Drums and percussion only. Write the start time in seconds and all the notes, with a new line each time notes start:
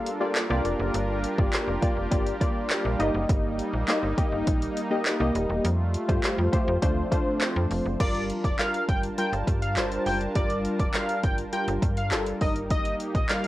0.06 closed hi-hat
0.35 snare, clap, closed hi-hat
0.65 closed hi-hat
0.94 closed hi-hat
1.24 closed hi-hat
1.38 kick
1.53 snare, clap, closed hi-hat
1.82 kick, closed hi-hat
2.12 kick, closed hi-hat
2.27 closed hi-hat
2.41 kick, closed hi-hat
2.70 snare, clap, closed hi-hat
3.00 closed hi-hat
3.29 kick, closed hi-hat
3.59 closed hi-hat
3.88 snare, clap, closed hi-hat
4.18 kick, closed hi-hat
4.47 kick, closed hi-hat
4.62 closed hi-hat
4.77 closed hi-hat
5.06 snare, clap, closed hi-hat
5.35 closed hi-hat
5.65 closed hi-hat
5.94 closed hi-hat
6.09 kick, closed hi-hat
6.24 snare, clap, closed hi-hat
6.53 kick, closed hi-hat
6.82 kick, closed hi-hat
7.12 kick, closed hi-hat
7.41 snare, clap, closed hi-hat
7.71 open hi-hat
8.00 kick, closed hi-hat, crash
8.15 closed hi-hat
8.30 closed hi-hat
8.44 kick, closed hi-hat
8.59 snare, clap, closed hi-hat
8.74 closed hi-hat
8.89 kick, closed hi-hat
9.03 closed hi-hat
9.18 closed hi-hat
9.33 closed hi-hat
9.47 kick, closed hi-hat
9.62 closed hi-hat
9.76 snare, clap, closed hi-hat
9.91 closed hi-hat
10.06 open hi-hat
10.21 closed hi-hat
10.35 kick, closed hi-hat
10.50 closed hi-hat
10.65 closed hi-hat
10.79 kick, closed hi-hat
10.94 snare, clap, closed hi-hat
11.09 closed hi-hat
11.23 kick, closed hi-hat
11.38 closed hi-hat
11.53 closed hi-hat
11.68 closed hi-hat
11.82 kick, closed hi-hat
11.97 closed hi-hat
12.12 snare, clap, closed hi-hat
12.26 closed hi-hat
12.41 kick, open hi-hat
12.56 closed hi-hat
12.70 kick, closed hi-hat
12.85 closed hi-hat
13.00 closed hi-hat
13.15 kick, closed hi-hat
13.29 snare, clap, closed hi-hat
13.44 closed hi-hat